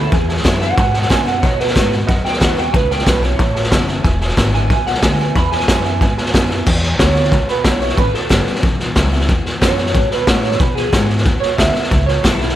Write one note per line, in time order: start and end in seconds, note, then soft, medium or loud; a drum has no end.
0.00 0.11 D2 loud
0.00 0.12 C#4 medium
0.00 0.11 E4 medium
0.00 0.12 A4 medium
0.12 0.74 E2 medium
0.12 0.44 E2 medium
0.12 0.44 G#4 loud
0.12 0.22 B4 loud
0.12 0.22 E5 medium
0.12 0.22 G#5 loud
0.12 kick loud
0.12 snare soft
0.28 0.38 B4 medium
0.28 0.38 E5 medium
0.28 0.39 G#5 medium
0.28 snare soft
0.37 snare soft
0.44 0.77 F#2 loud
0.44 0.76 D3 medium
0.44 0.76 G#3 loud
0.44 0.76 B3 loud
0.44 0.77 E4 loud
0.44 0.54 B4 medium
0.44 0.54 E5 medium
0.44 0.55 G#5 loud
0.44 kick medium
0.44 snare loud
0.44 hi-hat pedal medium
0.60 0.71 B4 medium
0.60 0.71 E5 medium
0.60 1.09 F#5 loud
0.60 0.71 G#5 medium
0.60 snare soft
0.77 1.09 G#2 medium
0.77 1.40 B2 medium
0.77 0.87 B4 loud
0.77 0.87 E5 medium
0.77 0.88 G#5 loud
0.77 kick loud
0.77 snare soft
0.93 1.03 B4 medium
0.93 1.03 E5 medium
0.93 1.04 G#5 medium
0.93 snare soft
1.02 snare soft
1.09 1.42 F#2 medium
1.09 1.26 D3 medium
1.09 1.26 G#3 medium
1.09 1.27 B3 medium
1.09 1.25 E4 medium
1.09 1.19 B4 medium
1.09 1.20 E5 medium
1.09 1.26 G#5 loud
1.09 1.20 G#5 loud
1.09 kick medium
1.09 snare loud
1.09 hi-hat pedal medium
1.26 1.43 B3 medium
1.26 1.42 E4 medium
1.26 1.36 B4 medium
1.26 1.36 E5 medium
1.26 1.43 F#5 loud
1.26 1.36 G#5 medium
1.26 snare soft
1.42 1.75 B2 medium
1.42 2.06 B2 medium
1.42 1.52 B4 loud
1.42 1.59 C#5 medium
1.42 1.52 D#5 medium
1.42 1.53 F#5 loud
1.42 kick loud
1.42 snare soft
1.58 1.69 B4 medium
1.58 1.75 B4 loud
1.58 1.69 D#5 medium
1.58 1.69 F#5 medium
1.58 snare soft
1.68 snare soft
1.75 2.08 G#2 loud
1.75 1.91 D#3 medium
1.75 1.92 A3 medium
1.75 1.92 B3 medium
1.75 1.91 F#4 loud
1.75 1.85 B4 medium
1.75 1.92 B4 loud
1.75 1.86 D#5 medium
1.75 1.86 F#5 medium
1.75 kick medium
1.75 snare loud
1.75 hi-hat pedal medium
1.91 2.09 B3 soft
1.91 2.08 F#4 medium
1.91 2.02 B4 medium
1.91 2.02 D#5 medium
1.91 2.02 F#5 medium
1.91 snare soft
2.07 2.71 F#2 loud
2.07 2.24 F#2 medium
2.07 2.17 B4 loud
2.07 2.18 D#5 loud
2.07 2.18 F#5 loud
2.07 kick loud
2.07 snare soft
2.24 2.34 B4 medium
2.24 2.35 F#5 medium
2.24 2.41 G5 loud
2.24 muted upright bass stroke soft
2.24 snare soft
2.33 snare soft
2.40 2.73 D#2 medium
2.40 2.57 D#3 medium
2.40 2.57 A3 medium
2.40 2.57 B3 medium
2.40 2.55 F#4 medium
2.40 2.51 B4 medium
2.40 2.58 B4 medium
2.40 2.51 D#5 medium
2.40 2.51 F#5 loud
2.40 kick medium
2.40 snare loud
2.40 hi-hat pedal medium
2.56 2.74 B3 medium
2.56 2.73 F#4 medium
2.56 2.67 B4 medium
2.56 2.67 D#5 medium
2.56 2.68 F#5 medium
2.56 2.74 G5 loud
2.56 snare soft
2.72 3.06 C#2 medium
2.72 3.36 A2 loud
2.72 2.90 B4 loud
2.72 2.83 C#5 medium
2.72 2.83 E5 medium
2.72 2.84 A5 loud
2.72 kick loud
2.72 snare soft
2.89 3.00 C#5 medium
2.89 3.00 E5 medium
2.89 3.07 G5 loud
2.89 3.00 A5 medium
2.89 snare soft
2.99 snare soft
3.05 3.38 B1 loud
3.05 3.22 E3 medium
3.05 3.23 G3 medium
3.05 3.23 C#4 loud
3.05 3.22 E4 loud
3.05 3.24 B4 medium
3.05 3.16 C#5 medium
3.05 3.16 E5 medium
3.05 3.16 A5 medium
3.05 kick medium
3.05 snare loud
3.05 hi-hat pedal medium
3.20 3.39 E4 medium
3.20 3.32 C#5 medium
3.20 3.87 C#5 loud
3.20 3.32 E5 medium
3.20 3.32 A5 medium
3.20 snare soft
3.25 3.40 C#4 soft
3.38 3.71 A1 medium
3.38 4.02 E2 medium
3.38 3.48 C#5 loud
3.38 3.49 E5 medium
3.38 3.49 A5 loud
3.38 kick loud
3.38 snare soft
3.53 3.65 C#5 medium
3.53 3.65 E5 medium
3.53 3.65 A5 medium
3.53 snare soft
3.64 snare soft
3.71 4.04 F#1 medium
3.71 3.88 E3 medium
3.71 3.88 G3 medium
3.71 3.88 C#4 loud
3.71 3.87 E4 medium
3.71 3.81 C#5 loud
3.71 3.81 E5 loud
3.71 3.82 A5 loud
3.71 kick loud
3.71 snare loud
3.71 hi-hat pedal medium
3.87 4.05 C#4 medium
3.87 4.04 E4 medium
3.87 3.98 C#5 loud
3.87 3.98 E5 medium
3.87 3.98 A5 loud
3.87 snare soft
4.03 4.36 E1 loud
4.03 4.67 E2 medium
4.03 4.14 B4 loud
4.03 4.14 E5 loud
4.03 4.14 G#5 loud
4.03 kick loud
4.03 snare soft
4.20 4.30 B4 medium
4.20 4.31 E5 medium
4.20 4.31 G#5 loud
4.20 snare soft
4.29 snare soft
4.37 4.69 G#1 loud
4.37 4.68 D3 loud
4.37 4.69 G#3 medium
4.37 4.69 B3 loud
4.37 4.69 E4 loud
4.37 4.47 B4 loud
4.37 4.48 E5 medium
4.37 4.48 G#5 loud
4.37 kick medium
4.37 snare loud
4.37 hi-hat pedal medium
4.53 4.63 B4 medium
4.53 4.64 E5 medium
4.53 4.64 G#5 medium
4.53 4.86 G#5 loud
4.53 snare soft
4.70 5.02 B1 medium
4.70 5.32 B2 loud
4.70 4.80 B4 medium
4.70 4.80 E5 medium
4.70 4.81 G#5 loud
4.70 kick loud
4.70 snare soft
4.86 4.96 B4 medium
4.86 4.96 E5 medium
4.86 5.03 F#5 loud
4.86 snare soft
4.95 snare soft
5.02 5.34 D2 loud
5.02 5.18 D3 medium
5.02 5.19 G#3 loud
5.02 5.19 B3 loud
5.02 5.17 E4 medium
5.02 5.12 B4 loud
5.02 5.13 E5 medium
5.02 5.34 G#5 loud
5.02 5.13 G#5 loud
5.02 kick medium
5.02 snare loud
5.02 hi-hat pedal medium
5.19 5.36 B3 medium
5.19 5.35 E4 medium
5.19 5.29 B4 medium
5.19 5.29 E5 medium
5.19 5.30 G#5 medium
5.19 snare soft
5.35 5.67 E2 medium
5.35 5.98 E2 medium
5.35 5.45 B4 loud
5.35 5.46 E5 medium
5.35 5.46 G#5 loud
5.35 5.51 B5 loud
5.35 kick loud
5.35 snare soft
5.51 5.62 B4 medium
5.51 5.62 E5 medium
5.51 6.47 G#5 loud
5.51 5.62 G#5 medium
5.51 snare soft
5.60 snare soft
5.68 6.00 F#2 loud
5.68 5.84 D3 medium
5.68 5.85 G#3 loud
5.68 5.85 B3 loud
5.68 5.84 E4 loud
5.68 5.78 B4 medium
5.68 5.78 E5 medium
5.68 5.79 G#5 loud
5.68 kick medium
5.68 snare loud
5.68 hi-hat pedal medium
5.84 6.02 B3 soft
5.84 6.01 E4 medium
5.84 5.94 B4 medium
5.84 5.94 E5 medium
5.84 5.95 G#5 medium
5.84 snare soft
6.01 6.33 G#2 medium
6.01 6.64 B2 medium
6.01 6.11 B4 loud
6.01 6.11 E5 loud
6.01 6.11 G#5 loud
6.01 kick loud
6.01 snare soft
6.17 6.27 B4 loud
6.17 6.27 E5 medium
6.17 6.28 G#5 loud
6.17 snare soft
6.26 snare soft
6.33 6.66 F#2 medium
6.33 6.49 D3 medium
6.33 6.50 G#3 medium
6.33 6.50 B3 loud
6.33 6.49 E4 medium
6.33 6.43 B4 loud
6.33 6.43 E5 loud
6.33 6.44 G#5 loud
6.33 kick medium
6.33 snare loud
6.33 hi-hat pedal medium
6.49 6.67 B3 medium
6.49 6.66 E4 medium
6.49 6.59 B4 loud
6.49 6.60 E5 medium
6.49 6.60 G#5 loud
6.49 snare soft
6.66 7.29 E2 medium
6.66 6.98 E2 medium
6.66 kick loud
6.66 snare soft
6.66 crash loud
6.83 snare soft
6.99 7.31 D2 loud
6.99 7.15 D3 medium
6.99 7.15 G#3 loud
6.99 7.16 B3 medium
6.99 7.14 E4 loud
6.99 7.47 C#5 loud
6.99 kick medium
6.99 snare loud
6.99 hi-hat pedal medium
7.16 7.32 B3 soft
7.16 7.31 E4 medium
7.16 snare soft
7.24 snare soft
7.31 7.47 C#2 medium
7.31 7.95 B2 medium
7.31 kick loud
7.31 snare soft
7.48 7.64 B4 medium
7.48 muted upright bass stroke soft
7.48 snare soft
7.64 7.97 B1 medium
7.64 7.80 D3 medium
7.64 7.81 G#3 medium
7.64 7.81 B3 medium
7.64 7.80 E4 medium
7.64 7.79 C#5 medium
7.64 kick medium
7.64 snare loud
7.64 hi-hat pedal medium
7.81 7.98 B3 medium
7.81 7.97 E4 medium
7.81 7.97 C#5 medium
7.81 snare soft
7.89 snare soft
7.97 8.13 A1 medium
7.97 8.60 A2 loud
7.97 8.14 B4 loud
7.97 kick loud
7.97 snare soft
8.13 8.46 A4 medium
8.13 muted upright bass stroke soft
8.13 snare soft
8.29 8.46 G1 loud
8.29 8.61 E3 medium
8.29 8.62 G3 medium
8.29 8.62 C#4 loud
8.29 8.62 E4 loud
8.29 kick medium
8.29 snare loud
8.29 hi-hat pedal medium
8.47 muted upright bass stroke soft
8.47 snare soft
8.55 snare soft
8.63 8.95 B1 medium
8.63 9.25 E2 loud
8.63 kick loud
8.63 snare soft
8.80 snare soft
8.95 9.28 C#2 medium
8.95 9.11 E3 medium
8.95 9.12 G3 medium
8.95 9.12 C#4 medium
8.95 9.11 E4 medium
8.95 kick medium
8.95 snare loud
8.95 hi-hat pedal medium
9.12 9.29 C#4 medium
9.12 9.28 E4 medium
9.12 snare soft
9.21 snare soft
9.29 9.61 E2 medium
9.29 9.91 E2 loud
9.29 kick loud
9.29 snare soft
9.46 snare soft
9.61 9.93 F#2 medium
9.61 9.77 D3 medium
9.61 9.78 G#3 medium
9.61 9.78 B3 medium
9.61 9.77 E4 loud
9.61 10.09 C#5 loud
9.61 kick medium
9.61 snare loud
9.61 hi-hat pedal medium
9.78 9.95 B3 soft
9.78 9.94 E4 medium
9.78 snare soft
9.86 snare soft
9.95 10.10 G#2 medium
9.95 10.57 B2 loud
9.95 kick loud
9.95 snare soft
10.11 10.28 B4 loud
10.11 muted upright bass stroke soft
10.11 snare soft
10.27 10.59 A2 loud
10.27 10.58 D3 medium
10.27 10.59 G#3 medium
10.27 10.59 B3 medium
10.27 10.59 E4 loud
10.27 10.42 C#5 loud
10.27 kick medium
10.27 snare loud
10.27 hi-hat pedal loud
10.43 10.59 C#5 medium
10.43 snare soft
10.52 snare soft
10.59 11.23 E2 medium
10.59 10.92 B2 medium
10.59 10.75 B4 medium
10.59 kick loud
10.59 snare soft
10.75 11.08 G#4 medium
10.75 snare soft
10.92 11.25 G#2 loud
10.92 11.08 D3 medium
10.92 11.09 G#3 loud
10.92 11.09 B3 loud
10.92 11.08 E4 medium
10.92 kick medium
10.92 snare loud
10.92 hi-hat pedal medium
11.09 11.26 B3 soft
11.09 11.25 E4 medium
11.09 snare soft
11.18 snare soft
11.25 11.41 E2 medium
11.25 11.88 B2 medium
11.25 kick loud
11.25 snare soft
11.40 11.57 C#5 loud
11.40 muted upright bass stroke soft
11.40 snare soft
11.57 11.74 D2 medium
11.57 11.74 D3 medium
11.57 11.75 G#3 medium
11.57 11.75 B3 medium
11.57 11.74 E4 loud
11.57 12.06 E5 loud
11.57 kick medium
11.57 snare loud
11.57 hi-hat pedal medium
11.75 11.92 B3 medium
11.75 11.91 E4 medium
11.75 snare soft
11.84 snare soft
11.91 12.23 C#2 medium
11.91 12.54 A2 medium
11.91 kick loud
11.91 snare soft
12.06 12.23 C#5 medium
12.06 snare soft
12.23 12.55 B1 loud
12.23 12.40 E3 medium
12.23 12.40 G3 loud
12.23 12.41 C#4 medium
12.23 12.39 E4 loud
12.23 12.39 A4 loud
12.23 kick medium
12.23 snare loud
12.23 hi-hat pedal medium
12.40 12.55 C#4 soft
12.40 12.55 E4 loud
12.40 12.55 E4 medium
12.40 snare soft
12.49 snare soft